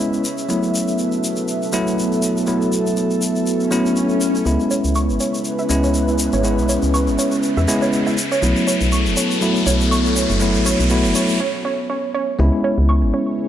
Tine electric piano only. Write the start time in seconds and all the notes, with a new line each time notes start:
Already playing: G#3 B3 C#4 E4
0.49 F#3 A3 B3 E4
1.73 F#3 A3 B3 E4
2.47 F#3 A3 B3 E4
3.71 F#3 A3 B3 E4
4.45 G#3 B3 C#4 E4
5.69 G#3 B3 C#4 E4
6.44 G#3 B3 C#4 E4
7.68 G#3 B3 C#4 E4
8.42 F#3 A3 B3 E4
9.41 F#3 A3 B3 E4
10.40 F#3 A3 B3 E4
10.90 F#3 A3 B3 E4
12.39 G#3 B3 C#4 E4